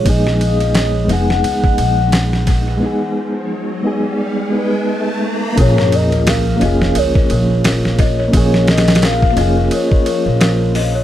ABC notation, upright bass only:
X:1
M:4/4
L:1/16
Q:"Swing 16ths" 1/4=87
K:Bbphr
V:1 name="Upright bass" clef=bass
B,,,6 F,,,2 D,,2 B,,,6 | z16 | B,,,6 F,,,2 D,,2 B,,,6 | B,,,6 F,,,2 z3 B,,,4- B,,, |]